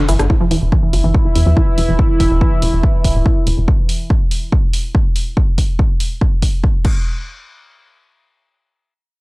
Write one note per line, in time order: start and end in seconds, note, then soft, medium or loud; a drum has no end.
0.09 0.18 G1 medium
0.09 0.14 E3 loud
0.09 open hi-hat loud
0.09 shaker medium
0.19 0.28 G1 medium
0.19 0.27 D3 medium
0.19 cross-stick medium
0.19 closed hi-hat medium
0.19 shaker soft
0.30 0.35 E3 medium
0.30 3.72 E3 medium
0.30 3.72 E4 medium
0.30 kick loud
0.41 0.44 F3 loud
0.51 0.60 E1 medium
0.51 0.56 E3 loud
0.51 open hi-hat loud
0.62 0.70 E1 medium
0.72 0.75 E3 medium
0.72 kick loud
0.83 0.88 E3 medium
0.93 1.02 G1 medium
0.93 0.96 F3 loud
0.93 open hi-hat loud
1.04 1.13 G1 medium
1.04 1.09 E3 loud
1.14 kick loud
1.25 1.28 E3 medium
1.35 1.44 E2 loud
1.35 1.41 E3 medium
1.35 open hi-hat loud
1.46 1.55 E2 medium
1.46 1.49 F3 loud
1.57 1.62 E3 loud
1.57 kick loud
1.78 1.87 E1 medium
1.78 1.81 E3 medium
1.78 open hi-hat loud
1.88 1.97 E1 medium
1.88 1.93 E3 medium
1.99 kick loud
2.20 2.29 E1 medium
2.20 kick medium
2.20 open hi-hat loud
2.31 2.39 E1 medium
2.41 kick loud
2.62 2.71 E1 medium
2.62 open hi-hat loud
2.73 2.82 E1 medium
2.83 kick loud
3.04 3.14 D1 medium
3.04 kick medium
3.04 open hi-hat loud
3.15 3.24 D1 medium
3.26 kick loud
3.47 3.56 E1 medium
3.47 open hi-hat loud
3.58 3.66 E1 medium
3.68 kick loud
3.89 open hi-hat loud
4.10 kick loud
4.31 open hi-hat loud
4.52 kick loud
4.73 open hi-hat loud
4.95 kick loud
5.16 open hi-hat loud
5.37 kick loud
5.58 kick medium
5.58 open hi-hat loud
5.79 kick loud
6.00 open hi-hat loud
6.21 kick loud
6.42 kick medium
6.42 open hi-hat loud
6.64 kick loud
6.85 kick loud
6.85 crash medium